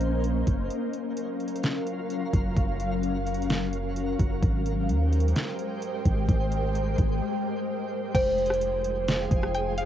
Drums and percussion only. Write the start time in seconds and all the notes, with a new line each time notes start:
0.01 closed hi-hat
0.24 closed hi-hat
0.47 kick, closed hi-hat
0.70 closed hi-hat
0.93 closed hi-hat
1.17 closed hi-hat
1.40 closed hi-hat
1.48 closed hi-hat
1.56 closed hi-hat
1.64 snare, closed hi-hat
1.87 closed hi-hat
2.10 closed hi-hat
2.33 kick, closed hi-hat
2.56 kick, closed hi-hat
2.80 closed hi-hat
3.03 closed hi-hat
3.26 closed hi-hat
3.34 closed hi-hat
3.42 closed hi-hat
3.50 snare, closed hi-hat
3.73 closed hi-hat
3.96 closed hi-hat
4.19 kick, closed hi-hat
4.43 kick, closed hi-hat
4.66 closed hi-hat
4.89 closed hi-hat
5.13 closed hi-hat
5.20 closed hi-hat
5.28 closed hi-hat
5.36 snare, closed hi-hat
5.59 closed hi-hat
5.82 closed hi-hat
6.05 kick, closed hi-hat
6.29 kick, closed hi-hat
6.52 closed hi-hat
6.75 closed hi-hat
6.98 kick, closed hi-hat
8.15 kick, closed hi-hat, crash
8.38 closed hi-hat
8.46 closed hi-hat
8.50 cross-stick, closed hi-hat
8.61 closed hi-hat
8.84 closed hi-hat
9.08 snare, closed hi-hat
9.31 kick, closed hi-hat
9.43 cross-stick
9.54 closed hi-hat
9.78 closed hi-hat